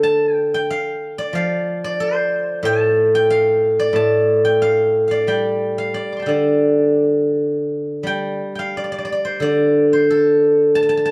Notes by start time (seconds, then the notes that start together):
Already playing: D3 A4 C5 D5
0.03 A5
0.33 G5
0.54 G5
0.70 F5
1.18 D5
1.33 F3 F5
1.84 D5
2.00 C5
2.63 A2 A5
3.15 G5
3.30 F5
3.79 D5
3.93 A2 A5
4.45 G5
4.62 F5
5.08 D5 F5
5.27 G3 G5
5.78 F5
5.94 D5
6.12 D6
6.17 A5 C6
6.22 D3 G5
6.27 D5 F5
8.03 G3 G5
8.55 F5 G5
8.77 D5
8.84 D5
8.92 D5
8.98 D5
9.05 D5
9.12 D5
9.25 C5
9.40 D3 D5
9.93 C5
10.10 A4
10.75 A5
10.83 A5
10.89 A5
10.97 A5
11.05 A5